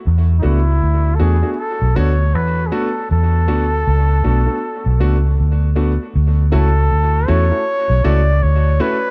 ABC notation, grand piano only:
X:1
M:4/4
L:1/16
Q:"Swing 16ths" 1/4=79
K:Dlyd
V:1 name="Grand piano"
z2 [A,B,DF] z3 [A,B,DF] [A,B,DF] z2 [A,B,DF] z3 [A,B,DF] z | z2 [A,B,DF] z3 [A,B,DF] [A,B,DF] z2 [A,B,DF] z3 [A,B,DF] z | z2 [A,CEF] z3 [A,CEF] [A,CEF] z2 [A,CEF] z3 [A,CEF] z |]